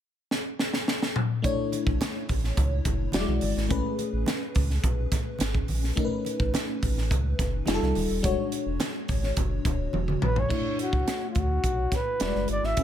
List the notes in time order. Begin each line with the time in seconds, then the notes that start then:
0.31 snare
0.59 snare
0.73 snare
0.88 snare
1.02 snare
1.16 mid tom
1.42 B1 A3 D4 E4 C#5, kick, closed hi-hat, muted conga
1.72 closed hi-hat, muted conga
1.87 A1, kick
2.01 snare, closed hi-hat, high conga
2.29 A1, kick, open hi-hat
2.44 snare
2.57 C#2, kick, closed hi-hat, muted conga, low conga
2.85 F#1, kick, closed hi-hat, muted conga, low conga
3.12 E1 F#3 E4 F#4 D5, snare, closed hi-hat, high conga
3.20 G#3
3.28 B1, high conga
3.41 G1, open hi-hat, high conga
3.57 G#1, snare
3.69 A1 A3 C#4 G#4 B4, kick, closed hi-hat, muted conga
3.99 closed hi-hat, muted conga
4.13 A1
4.26 snare, closed hi-hat, high conga
4.55 C#2, kick, open hi-hat
4.70 snare
4.83 B1, kick, closed hi-hat, muted conga, low conga
5.12 kick, snare, closed hi-hat, muted conga, low conga
5.39 G#1, snare, closed hi-hat, high conga
5.55 kick, high conga
5.68 A#1, open hi-hat, high conga
5.84 snare
5.96 B1 A3 C#4 D#4 A#4, kick, closed hi-hat, muted conga
6.05 B4
6.25 closed hi-hat, muted conga
6.40 A1, kick
6.54 snare, closed hi-hat, high conga
6.83 A1, kick, open hi-hat
6.98 snare
7.11 C#2, kick, closed hi-hat, muted conga, low conga
7.39 F#1, kick, snare, closed hi-hat, muted conga, low conga
7.66 F1 G3 D#4 F4 G#4, snare, closed hi-hat, high conga
7.74 A4
7.82 C2, snare, high conga
7.95 D1, open hi-hat, high conga
8.10 D#1
8.23 E1 G#3 D4 F#4 C#5, kick, closed hi-hat, muted conga
8.52 closed hi-hat
8.66 E1
8.80 snare, closed hi-hat, high conga
9.08 G#1, kick, open hi-hat
9.23 snare
9.37 F#1, kick, closed hi-hat, muted conga, low conga
9.65 D1, kick, closed hi-hat, muted conga, low conga
9.93 E1, high tom, high conga
10.08 mid tom, high conga
10.22 A#1 B4, mid tom, high conga
10.36 C#5, floor tom
10.49 B1 A3 D4 E4 C#5, kick, crash
10.79 F#4, closed hi-hat
10.93 C#2, kick
11.08 snare, closed hi-hat
11.30 F4
11.35 D2, kick, closed hi-hat
11.39 F#4
11.64 B1, kick, closed hi-hat
11.92 B4, kick, snare, closed hi-hat
12.20 E1 G3 E4 F#4 D5, snare, closed hi-hat
12.27 G#3
12.35 F#1, snare
12.48 G1 D5, closed hi-hat
12.63 G#1 E5, snare
12.77 A1 A3 C#4 G#4 B4, kick, closed hi-hat